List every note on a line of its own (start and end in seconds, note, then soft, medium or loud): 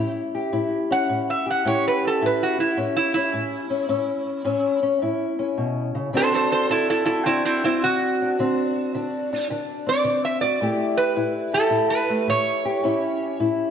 0.00 0.49 A2 medium
0.00 0.90 C#4 medium
0.00 0.53 E4 medium
0.00 0.11 G4 medium
0.35 1.46 G4 medium
0.53 1.05 A2 medium
0.53 1.65 E4 medium
0.91 1.65 C#4 soft
0.91 1.28 F#5 medium
1.09 1.62 A2 medium
1.30 1.47 E5 medium
1.46 1.66 G4 medium
1.50 1.67 F#5 medium
1.65 2.18 A2 medium
1.65 2.77 C#4 medium
1.65 2.22 E4 medium
1.65 3.89 G4 medium
1.65 1.85 C#5 medium
1.88 2.04 B4 medium
2.07 2.23 A4 medium
2.21 2.74 A2 medium
2.21 2.58 E4 medium
2.26 2.42 B4 medium
2.43 2.60 F#4 medium
2.58 3.88 E4 medium
2.58 2.78 E4 medium
2.77 3.30 A2 medium
2.77 3.15 C#4 medium
2.97 3.13 E4 medium
3.14 3.69 C#4 medium
3.14 4.79 E4 medium
3.33 3.86 A2 medium
3.70 3.87 C#4 medium
3.89 4.42 A2 medium
3.89 4.44 C#4 medium
4.45 4.98 A2 medium
4.45 4.82 C#4 medium
4.83 5.38 C#4 medium
5.02 5.55 A2 medium
5.02 6.12 E4 medium
5.39 6.12 C#4 medium
5.58 5.94 B2 medium
5.95 6.13 C#3 medium
6.13 6.66 D3 medium
6.13 7.63 C4 medium
6.13 6.70 D4 medium
6.13 7.06 F#4 medium
6.13 6.33 A4 medium
6.13 6.34 C5 loud
6.35 6.51 A4 medium
6.35 6.51 C5 medium
6.52 6.69 A4 medium
6.52 6.70 C5 medium
6.70 7.22 D3 medium
6.70 7.26 D4 medium
6.70 6.89 E4 medium
6.70 6.89 A4 medium
6.90 7.04 E4 medium
6.90 7.05 A4 medium
7.05 7.24 E4 medium
7.05 10.42 F#4 medium
7.05 7.25 A4 medium
7.26 7.78 D3 medium
7.26 7.44 C4 medium
7.26 8.20 D4 medium
7.26 7.44 E4 medium
7.45 7.63 C4 medium
7.45 7.63 E4 medium
7.64 7.81 C4 medium
7.64 8.36 C4 medium
7.64 7.83 E4 medium
7.83 8.35 D3 medium
7.83 9.47 F#4 medium
8.22 8.37 D4 medium
8.39 8.91 D3 medium
8.39 9.85 C4 medium
8.39 8.94 D4 medium
8.95 9.46 D3 medium
8.95 9.32 D4 medium
9.33 9.50 D4 medium
9.50 10.02 D3 medium
9.50 10.60 D4 medium
9.86 10.59 C4 medium
9.86 10.24 D5 medium
10.04 10.57 D3 medium
10.25 10.41 E5 medium
10.41 10.62 F#4 medium
10.41 10.96 D5 medium
10.61 11.13 A2 medium
10.61 12.08 A3 medium
10.61 11.16 E4 medium
10.61 11.53 G4 medium
10.97 11.52 B4 medium
11.16 11.69 A2 medium
11.16 11.70 E4 medium
11.53 12.64 G4 medium
11.53 11.90 A4 loud
11.70 12.23 A2 medium
11.70 12.84 E4 medium
11.90 12.27 B4 loud
12.10 12.84 A3 medium
12.27 12.80 A2 medium
12.27 13.37 C#5 loud
12.65 12.82 G4 medium
12.83 13.36 A2 medium
12.83 13.71 C#4 medium
12.83 13.40 E4 medium
12.83 13.71 G4 medium
13.40 13.71 A2 medium
13.40 13.71 E4 medium